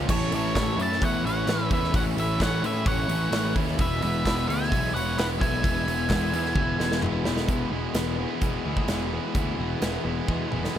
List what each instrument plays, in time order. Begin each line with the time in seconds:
Already playing: overdriven electric guitar G#3 C#4
0.08 picked electric bass A1, overdriven electric guitar A2 E3 A3 C#4 E4, lead electric guitar C#5, kick, crash
0.12 overdriven electric guitar E3 A3 C#4 E4, lead electric guitar A4
0.31 picked electric bass A1, overdriven electric guitar C#4 E4, lead electric guitar A4, open hi-hat
0.36 overdriven electric guitar A3 C#4, lead electric guitar C#5
0.55 picked electric bass A1, overdriven electric guitar E3 A3 C#4, kick, snare, clap, open hi-hat
0.60 overdriven electric guitar E4
0.77 picked electric bass F#2, overdriven electric guitar A3 C#4 E4, open hi-hat
0.82 overdriven electric guitar A2 E3, lead electric guitar E5 A5
0.92 snare
1.00 picked electric bass E2, overdriven electric guitar E3 A3 C#4, lead electric guitar C#5 F#5, kick, open hi-hat
1.04 overdriven electric guitar C#4 E4
1.24 picked electric bass A1, overdriven electric guitar A2 E3 A3 C#4 E4, lead electric guitar F#5, open hi-hat
1.28 lead electric guitar C#5
1.46 picked electric bass A1, overdriven electric guitar A2 E3 A3 C#4, snare, clap, open hi-hat
1.51 overdriven electric guitar E4
1.70 picked electric bass E2, overdriven electric guitar A3 C#4 E4, lead electric guitar E5, kick, open hi-hat
1.75 lead electric guitar B4
1.84 snare
1.93 picked electric bass A1, overdriven electric guitar A2 E3 A3 C#4 E4, lead electric guitar F#5, kick, open hi-hat
1.99 lead electric guitar C#5
2.16 picked electric bass A1, overdriven electric guitar C#4 E4, lead electric guitar E5, open hi-hat
2.21 overdriven electric guitar A3, lead electric guitar B4
2.40 picked electric bass A1, overdriven electric guitar E3 A3 C#4, lead electric guitar C#5 F#5, kick, snare, clap, open hi-hat
2.45 overdriven electric guitar E4
2.63 picked electric bass A2, overdriven electric guitar A2 E3 A3 C#4 E4, lead electric guitar B4 E5, open hi-hat
2.85 picked electric bass A1, overdriven electric guitar E3 A3 C#4 E4, lead electric guitar C#5 F#5, kick, open hi-hat
3.08 picked electric bass A1, overdriven electric guitar A3 C#4 E4, open hi-hat
3.12 overdriven electric guitar A2 E3
3.31 picked electric bass A1, overdriven electric guitar A2 E3 A3 C#4 E4, snare, clap, open hi-hat
3.55 picked electric bass D#2, overdriven electric guitar C#4 E4, kick, open hi-hat
3.60 overdriven electric guitar A3
3.68 snare
3.78 picked electric bass E1, overdriven electric guitar E2 B2 E3 G#3 B3 E4, lead electric guitar B4 E5, kick, open hi-hat
4.01 picked electric bass E1, overdriven electric guitar E3 G#3 B3 E4, lead electric guitar B4 E5, open hi-hat
4.24 picked electric bass E1, overdriven electric guitar E3 G#3 B3 E4, kick, snare, clap, open hi-hat
4.48 picked electric bass D2, overdriven electric guitar B2 E3 G#3 B3 E4, lead electric guitar E5 G#5, open hi-hat
4.52 overdriven electric guitar E2
4.63 snare
4.71 picked electric bass B1, overdriven electric guitar E3 G#3 B3 E4, kick, open hi-hat
4.93 picked electric bass E1, overdriven electric guitar E2 B2 E3 G#3 B3 E4, lead electric guitar C#5 F#5, open hi-hat
5.17 picked electric bass E1, overdriven electric guitar E3 G#3 B3 E4, lead electric guitar B4 F#5, snare, clap, open hi-hat
5.39 picked electric bass B1, overdriven electric guitar G#3 B3 E4, lead electric guitar E5 G#5, kick
5.43 overdriven electric guitar E3, open hi-hat
5.62 picked electric bass E1, overdriven electric guitar E2 B2 E3 G#3 B3 E4, kick, open hi-hat
5.86 picked electric bass E1, overdriven electric guitar E3 G#3 B3 E4, open hi-hat
6.09 picked electric bass E1, overdriven electric guitar E3 G#3 B3 E4, kick, snare, clap, open hi-hat
6.33 picked electric bass E2, overdriven electric guitar E2 E3 G#3 B3 E4, open hi-hat
6.37 overdriven electric guitar B2
6.46 snare
6.53 picked electric bass E1, overdriven electric guitar E3 G#3 E4, kick, high tom
6.58 overdriven electric guitar G#3 B3 E4
6.79 picked electric bass E1, overdriven electric guitar E2 B2 E3 G#3 B3 E4, snare
6.92 snare
7.02 picked electric bass E1, overdriven electric guitar E3 G#3 B3 E4, clap, mid tom
7.25 picked electric bass E1, overdriven electric guitar G#3 B3 E4, snare
7.29 overdriven electric guitar E3
7.37 snare
7.47 picked electric bass E1, overdriven electric guitar E2 B2 E3 G#3 E4, kick, closed hi-hat
7.52 overdriven electric guitar G#3 B3 G#4
7.72 picked electric bass E1, overdriven electric guitar E2 B2 E3 G#3 B3 E4 G#4
7.94 picked electric bass E1, overdriven electric guitar E2 B2 E3 G#3 B3 E4 G#4, snare, closed hi-hat
8.19 overdriven electric guitar E2 B2 E3 G#3 B3 E4 G#4
8.41 picked electric bass E1, overdriven electric guitar E2 B2 E3 G#3 B3 E4 G#4, kick, closed hi-hat
8.64 picked electric bass D2, overdriven electric guitar E2 B2 E3 G#3 E4
8.68 overdriven electric guitar G#3 B3 G#4
8.77 kick
8.88 picked electric bass E1, overdriven electric guitar E2 B2 E3 G#3 B3 E4 G#4, snare, closed hi-hat
9.12 overdriven electric guitar E2 B2 E3 G#3 B3 E4 G#4
9.35 picked electric bass D2, overdriven electric guitar E2 B2 E3 G#3 B3 E4 G#4, kick, closed hi-hat
9.58 picked electric bass E1, overdriven electric guitar E2 B2 E3 G#3 B3 E4 G#4
9.81 picked electric bass E1, overdriven electric guitar E2 B2 E3 G#3 B3 E4 G#4, snare, closed hi-hat
10.03 picked electric bass E1, overdriven electric guitar E2 B2 E3 G#3 B3 E4 G#4
10.28 overdriven electric guitar E2 B2 E3 G#3 B3 E4 G#4, picked electric bass E2, kick
10.51 picked electric bass E1, overdriven electric guitar E2 B2 E3 G#3 B3 E4 G#4, mid tom
10.65 snare
10.73 overdriven electric guitar E2 B2 E3 G#3 B3